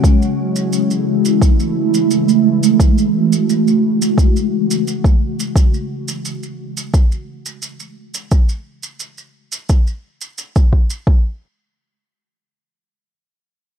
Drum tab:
SH |xx-xxx-xxx-xxx-x|xx-xxx-xxx-xxx-x|xx-xxx-xxx-xxx-x|xx-xxx-xxx-xxx-x|
BD |o-------o-------|o-------o----o--|o-------o-------|o-------o----oo-|

SH |----------------|
BD |o---------------|